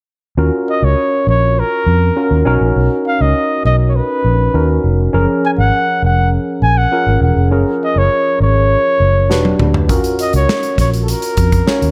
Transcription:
0.37 0.49 D#2 medium
0.37 1.47 C#4 medium
0.37 1.47 F4 medium
0.37 1.47 F#4 medium
0.37 1.48 A#4 medium
0.70 0.86 D#5 medium
0.82 0.94 C#2 medium
0.82 1.28 C#5 medium
1.27 1.61 A#1 medium
1.27 1.61 C#5 medium
1.59 2.47 A#4 medium
1.86 2.09 F2 medium
2.16 2.44 C#4 medium
2.16 2.46 F4 medium
2.16 2.45 F#4 medium
2.16 2.46 A#4 medium
2.31 2.42 D#2 medium
2.45 2.57 B1 medium
2.45 3.55 C#4 medium
2.45 3.55 D#4 medium
2.45 3.56 F#4 medium
2.45 3.56 A#4 medium
2.61 2.72 A#1 medium
2.76 2.87 B1 medium
3.07 3.23 F5 medium
3.21 3.32 C#2 medium
3.21 3.65 D#5 medium
3.65 4.00 B1 medium
3.65 3.76 D#5 medium
3.89 3.97 C#5 medium
3.96 4.84 B4 medium
4.24 4.47 A#1 medium
4.54 4.77 D#2 medium
4.54 5.09 C#4 medium
4.54 5.09 D#4 medium
4.54 5.09 F#4 medium
4.54 5.09 A#4 medium
4.84 5.07 F1 medium
5.13 5.25 F#1 medium
5.13 6.23 F3 medium
5.13 6.23 C#4 medium
5.13 6.23 G#4 medium
5.13 6.23 A#4 medium
5.45 5.51 G#5 medium
5.58 5.70 G#1 medium
5.58 6.00 F#5 medium
6.02 6.37 F1 medium
6.02 6.31 F#5 medium
6.62 6.85 A#1 medium
6.62 6.79 G#5 medium
6.78 7.22 F#5 medium
6.91 7.46 C#4 medium
6.91 7.47 F4 medium
6.91 7.47 G#4 medium
6.91 7.47 A#4 medium
7.07 7.18 G#1 medium
7.21 7.33 E1 medium
7.21 7.50 F#5 medium
7.36 7.51 F1 medium
7.51 7.63 F#1 medium
7.51 8.61 C#4 medium
7.51 8.61 F4 medium
7.51 8.61 G#4 medium
7.51 8.61 A#4 medium
7.84 8.00 D#5 medium
7.96 8.07 F#1 medium
7.96 8.42 C#5 medium
8.40 8.75 G#1 medium
8.40 9.56 C#5 medium
9.00 9.30 F#1 medium
9.30 9.53 E1 medium
9.30 9.84 D4 medium
9.30 9.85 F#4 medium
9.30 9.85 G4 medium
9.30 9.85 B4 medium
9.30 snare medium
9.45 high tom medium
9.59 9.89 D2 medium
9.59 mid tom medium
9.74 floor tom medium
9.89 10.01 D#2 medium
9.89 10.98 C#4 medium
9.89 10.99 F4 medium
9.89 10.99 F#4 medium
9.89 10.99 A#4 medium
9.89 kick loud
9.89 closed hi-hat medium
10.04 closed hi-hat medium
10.19 10.34 D#5 medium
10.19 closed hi-hat medium
10.33 10.45 C#2 medium
10.33 10.76 C#5 medium
10.33 closed hi-hat soft
10.49 snare loud
10.63 closed hi-hat medium
10.78 11.13 A#1 medium
10.78 10.90 C#5 medium
10.78 kick medium
10.78 snare soft
10.78 closed hi-hat medium
10.94 closed hi-hat soft
11.02 11.12 A4 medium
11.08 11.91 A#4 medium
11.08 closed hi-hat medium
11.22 closed hi-hat medium
11.37 11.61 F2 medium
11.37 kick medium
11.37 closed hi-hat medium
11.52 kick medium
11.52 closed hi-hat soft
11.67 11.91 C#4 medium
11.67 11.91 F4 medium
11.67 11.91 F#4 medium
11.67 11.91 C#5 medium
11.67 snare medium
11.82 11.91 D#2 medium
11.82 closed hi-hat medium

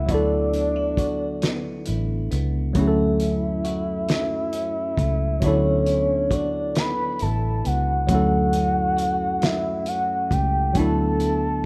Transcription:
0.00 0.79 F#3 medium
0.00 1.42 A3 medium
0.00 0.18 C#4 medium
0.00 0.11 A4 medium
0.00 0.12 E5 medium
0.06 1.83 D2 loud
0.06 2.76 D3 medium
0.06 2.70 F#3 medium
0.06 2.71 B3 medium
0.06 kick loud
0.06 closed hi-hat medium
0.10 2.72 D4 medium
0.10 2.73 E4 medium
0.10 0.98 F#4 medium
0.10 2.74 A4 medium
0.10 1.88 D5 loud
0.54 0.76 D4 medium
0.54 closed hi-hat soft
0.76 1.86 E4 medium
0.97 2.76 F#4 medium
0.97 kick loud
0.97 closed hi-hat medium
1.42 2.30 B3 medium
1.42 snare loud
1.42 closed hi-hat medium
1.86 2.28 A1 medium
1.86 3.20 E4 medium
1.86 closed hi-hat medium
2.31 2.72 C#2 medium
2.31 2.84 B3 medium
2.31 closed hi-hat medium
2.73 4.94 D2 loud
2.73 5.42 F#2 medium
2.73 5.37 F#3 medium
2.73 5.38 A3 medium
2.73 5.39 C#4 medium
2.73 3.64 F#4 medium
2.73 kick loud
2.73 closed hi-hat medium
2.77 5.40 E4 medium
2.77 2.85 G#4 medium
2.77 5.46 E5 loud
2.87 5.44 A4 medium
3.20 4.52 C#4 medium
3.20 closed hi-hat medium
3.64 5.43 F#4 medium
3.64 closed hi-hat medium
4.09 5.90 F#3 medium
4.09 snare loud
4.09 closed hi-hat medium
4.53 5.51 C#4 medium
4.53 closed hi-hat medium
4.97 5.39 C#2 loud
4.97 6.75 A3 medium
4.97 kick loud
4.97 closed hi-hat medium
5.40 7.24 D2 loud
5.40 8.09 D3 medium
5.40 8.04 F#3 medium
5.40 8.05 B3 medium
5.40 8.06 D4 medium
5.40 6.31 F#4 medium
5.40 kick loud
5.40 closed hi-hat medium
5.44 8.07 E4 medium
5.44 8.08 A4 medium
5.44 6.35 C#5 loud
5.86 7.20 E4 medium
5.86 closed hi-hat soft
6.31 8.09 F#4 medium
6.31 6.79 D5 loud
6.31 kick loud
6.31 closed hi-hat medium
6.75 7.63 B3 medium
6.75 7.24 B5 loud
6.75 snare loud
6.75 closed hi-hat medium
7.19 7.62 A1 medium
7.19 8.53 E4 medium
7.19 7.68 A5 loud
7.19 closed hi-hat medium
7.64 8.06 C#2 medium
7.64 8.18 B3 medium
7.64 8.10 F#5 loud
7.64 closed hi-hat medium
8.07 10.27 D2 loud
8.07 10.75 F#2 medium
8.07 10.71 F#3 medium
8.07 10.72 A3 medium
8.07 10.72 C#4 medium
8.07 8.96 F#4 medium
8.07 9.46 F#5 loud
8.07 kick loud
8.07 closed hi-hat medium
8.13 10.73 E4 medium
8.13 10.74 A4 medium
8.53 9.85 C#4 medium
8.53 closed hi-hat medium
8.97 10.76 F#4 medium
8.97 closed hi-hat medium
9.41 11.23 F#3 medium
9.41 9.90 E5 loud
9.41 snare loud
9.41 closed hi-hat medium
9.86 10.84 C#4 medium
9.86 10.34 F#5 medium
9.86 closed hi-hat medium
10.31 10.72 C#2 loud
10.31 11.65 A3 medium
10.31 10.78 G5 loud
10.31 kick loud
10.31 closed hi-hat soft
10.73 11.65 D2 loud
10.73 11.65 D3 medium
10.73 11.65 F#3 medium
10.73 11.65 B3 medium
10.73 11.65 D4 medium
10.73 11.64 F#4 medium
10.73 11.65 A5 loud
10.73 kick loud
10.73 closed hi-hat medium
10.79 11.65 E4 medium
10.79 11.65 A4 medium
11.20 11.65 E4 medium
11.20 closed hi-hat soft

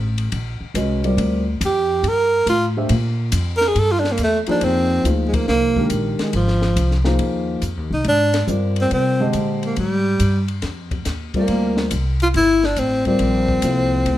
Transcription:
0.00 0.31 A1 medium
0.18 ride soft
0.32 0.59 A#1 medium
0.32 ride medium
0.61 muted upright bass stroke soft
0.74 1.17 C2 medium
0.74 1.01 G#3 medium
0.74 1.01 C#4 medium
0.74 1.01 F#4 soft
0.74 1.01 B4 medium
0.74 1.02 D#5 medium
0.74 hi-hat pedal medium
0.74 ride medium
1.04 1.41 G3 medium
1.04 1.41 C4 medium
1.04 1.42 F4 soft
1.04 1.42 A#4 soft
1.04 1.42 D5 medium
1.04 ride soft
1.17 1.59 D2 medium
1.17 ride medium
1.61 2.03 F2 medium
1.61 hi-hat pedal medium
1.61 ride medium
1.66 2.10 G4 medium
2.03 2.45 G2 medium
2.03 ride medium
2.08 2.49 A#4 medium
2.46 2.88 A2 medium
2.46 2.66 F4 medium
2.46 hi-hat pedal soft
2.46 ride medium
2.77 2.89 A3 medium
2.77 2.89 D4 medium
2.77 2.89 G4 medium
2.77 2.89 C5 medium
2.77 2.90 E5 medium
2.89 3.32 A#2 medium
2.89 ride medium
3.32 3.74 F2 medium
3.32 hi-hat pedal medium
3.32 ride medium
3.57 3.70 A#4 medium
3.57 snare soft
3.68 3.81 G#4 medium
3.75 4.17 G2 medium
3.75 3.93 A4 medium
3.75 ride medium
3.92 4.01 F4 medium
3.99 4.13 D4 medium
4.04 snare soft
4.12 4.19 A#3 medium
4.18 4.46 E2 medium
4.18 hi-hat pedal soft
4.18 ride medium
4.24 4.39 A3 medium
4.46 5.02 F3 medium
4.46 5.02 A#3 medium
4.46 5.02 D#4 medium
4.46 5.02 G#4 medium
4.46 5.02 C5 medium
4.46 muted upright bass stroke soft
4.46 ride soft
4.51 4.66 D4 medium
4.61 5.03 F2 medium
4.61 5.06 C4 medium
4.61 ride medium
5.04 5.46 D2 medium
5.04 5.71 F3 medium
5.04 5.71 A#3 soft
5.04 5.71 D#4 soft
5.04 5.71 G#4 soft
5.04 5.72 C5 medium
5.04 hi-hat pedal soft
5.04 ride medium
5.28 5.36 G#3 medium
5.34 5.48 A#3 medium
5.34 kick medium
5.34 ride medium
5.48 5.89 C2 medium
5.48 5.88 A#3 medium
5.48 snare soft
5.76 6.31 D#3 medium
5.76 6.31 G#3 medium
5.76 6.31 D4 medium
5.76 6.31 G4 medium
5.76 6.31 A#4 medium
5.76 kick soft
5.90 6.17 A#1 medium
5.90 hi-hat pedal soft
5.90 ride medium
6.19 6.34 G#3 medium
6.19 muted upright bass stroke soft
6.19 snare soft
6.19 ride soft
6.33 6.75 G#1 medium
6.33 7.02 F3 medium
6.33 ride medium
6.48 snare soft
6.62 snare soft
6.76 7.18 C2 medium
6.76 hi-hat pedal medium
6.76 ride medium
6.91 snare soft
7.05 7.59 F3 medium
7.05 7.59 A#3 medium
7.05 7.60 D#4 medium
7.05 7.60 G#4 medium
7.05 7.60 C5 medium
7.05 snare soft
7.19 7.61 D#2 medium
7.19 ride soft
7.62 7.77 F2 medium
7.62 hi-hat pedal medium
7.62 ride soft
7.77 7.90 D#2 soft
7.91 8.04 C2 medium
7.91 8.06 D#4 medium
8.04 8.47 G#2 medium
8.04 ride soft
8.09 8.47 D4 medium
8.34 snare soft
8.34 ride medium
8.47 8.89 G2 medium
8.47 9.14 G3 soft
8.47 9.14 C4 soft
8.47 9.14 F4 soft
8.47 9.14 A#4 soft
8.47 9.15 D5 medium
8.47 hi-hat pedal soft
8.76 ride soft
8.81 8.92 C4 medium
8.91 9.33 C3 medium
8.91 9.32 C4 medium
8.91 ride medium
9.20 9.75 D3 medium
9.20 9.74 G#3 medium
9.20 9.74 G4 medium
9.20 9.75 C5 medium
9.20 9.75 D#5 medium
9.33 9.76 A#2 medium
9.33 hi-hat pedal soft
9.33 ride medium
9.63 9.78 A#3 medium
9.63 ride soft
9.76 10.19 G#2 medium
9.76 10.46 G3 medium
9.76 ride soft
10.20 10.62 G2 medium
10.20 hi-hat pedal soft
10.20 ride medium
10.48 ride soft
10.62 11.05 F2 medium
10.62 snare soft
10.62 ride soft
10.91 kick soft
10.91 ride soft
11.05 11.48 D#2 medium
11.05 snare soft
11.05 hi-hat pedal soft
11.05 ride soft
11.34 11.89 G3 medium
11.34 11.89 C4 soft
11.34 11.89 F4 medium
11.34 11.90 A#4 medium
11.34 11.90 D5 medium
11.34 kick soft
11.34 ride soft
11.39 11.90 A#3 medium
11.48 11.90 D2 medium
11.48 ride medium
11.77 snare soft
11.91 12.33 C2 medium
11.91 hi-hat pedal soft
11.91 ride medium
12.20 12.29 F4 medium
12.20 ride soft
12.34 12.76 G1 medium
12.34 12.67 E4 medium
12.34 ride medium
12.64 12.81 D4 medium
12.64 snare soft
12.76 13.19 A1 medium
12.76 13.06 C4 medium
12.76 hi-hat pedal soft
12.76 ride soft
13.05 13.60 G3 medium
13.05 13.60 C4 medium
13.05 14.18 C4 medium
13.05 13.61 F4 medium
13.05 13.61 A#4 soft
13.05 13.61 D5 medium
13.05 kick soft
13.05 ride soft
13.19 13.62 A#1 medium
13.19 ride medium
13.48 kick soft
13.62 14.05 C2 medium
13.62 14.18 F3 soft
13.62 14.18 A#3 soft
13.62 14.18 E4 soft
13.62 14.18 A4 soft
13.62 14.18 C5 medium
13.62 hi-hat pedal medium
13.62 ride medium
14.06 14.18 D2 medium
14.06 ride medium

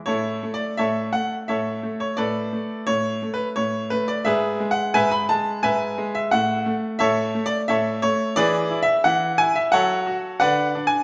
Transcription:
0.06 0.41 A2 medium
0.06 0.51 E4 medium
0.06 0.51 A4 medium
0.06 0.50 C#5 medium
0.43 0.77 A3 medium
0.54 0.78 D5 medium
0.77 1.12 A2 medium
0.77 1.11 A4 medium
0.77 1.11 C#5 medium
0.77 0.99 E5 loud
1.13 1.47 A3 medium
1.13 1.34 F#5 loud
1.48 1.82 A2 medium
1.48 1.97 A4 medium
1.48 1.97 C#5 medium
1.48 1.79 E5 medium
1.83 2.17 A3 medium
2.00 2.18 C#5 medium
2.17 2.51 A2 medium
2.17 2.83 A4 medium
2.17 2.83 B4 medium
2.17 2.86 D5 medium
2.52 2.86 A3 medium
2.87 3.21 A2 medium
2.87 3.29 C#5 loud
3.22 3.56 A3 medium
3.34 3.47 B4 medium
3.56 3.90 A2 medium
3.56 3.87 C#5 loud
3.90 4.24 A3 medium
3.90 4.08 B4 loud
4.08 4.25 D5 medium
4.25 4.59 G#2 medium
4.25 4.68 G#4 medium
4.25 4.68 B4 medium
4.25 4.71 E5 loud
4.60 4.93 G#3 medium
4.71 4.94 F#5 loud
4.94 5.28 G#2 medium
4.94 5.11 B4 loud
4.94 5.11 E5 loud
4.94 5.11 G#5 loud
5.11 5.29 B5 loud
5.29 5.63 G#3 medium
5.29 5.60 A5 loud
5.63 5.97 G#2 medium
5.63 6.12 B4 medium
5.63 6.12 E5 medium
5.63 6.15 G#5 loud
5.98 6.31 G#3 medium
6.15 6.32 E5 loud
6.31 6.66 A2 medium
6.31 6.73 F#5 loud
6.66 6.99 A3 medium
6.99 7.33 A2 medium
6.99 7.43 A4 loud
6.99 7.43 C#5 loud
6.99 7.45 E5 loud
7.34 7.68 A3 medium
7.46 7.60 D5 loud
7.68 8.02 A2 medium
7.68 8.01 A4 medium
7.68 8.01 C#5 medium
7.68 8.03 E5 loud
8.02 8.36 A3 medium
8.02 8.33 C#5 loud
8.36 8.70 E3 medium
8.36 8.80 G#4 medium
8.36 8.80 B4 medium
8.36 8.78 D5 loud
8.71 9.04 E4 medium
8.83 9.05 E5 loud
9.04 9.38 E3 medium
9.04 9.39 F#5 loud
9.38 9.72 E4 medium
9.38 9.56 G#5 loud
9.55 9.73 E5 loud
9.72 10.06 F#3 medium
9.72 10.37 A4 medium
9.72 10.37 C#5 medium
9.72 10.13 F#5 loud
10.06 10.40 F#4 medium
10.40 10.74 D3 medium
10.40 10.84 B4 loud
10.40 10.84 D5 loud
10.40 10.68 F#5 loud
10.75 11.03 D4 medium
10.87 11.03 G#5 loud

